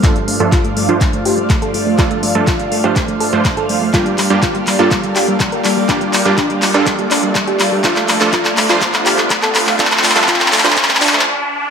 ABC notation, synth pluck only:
X:1
M:4/4
L:1/16
Q:1/4=123
K:Dphr
V:1 name="Synth pluck"
F A, A, A, F A, A, F A, A, G A, A, A A, A, | F A, A, A, F A, A, G A, A, A A, A, A A, A, | F G, G, G, F G, G, F G, G, G G, G, B G, G, | D G, G, G, D G, G, D G, G, D G, G, G G, G, |
F A, A, A, F A, A, F A, A, G A, A, A A, A, | F A, A, A, F A, A, D A, A, D A, z4 |]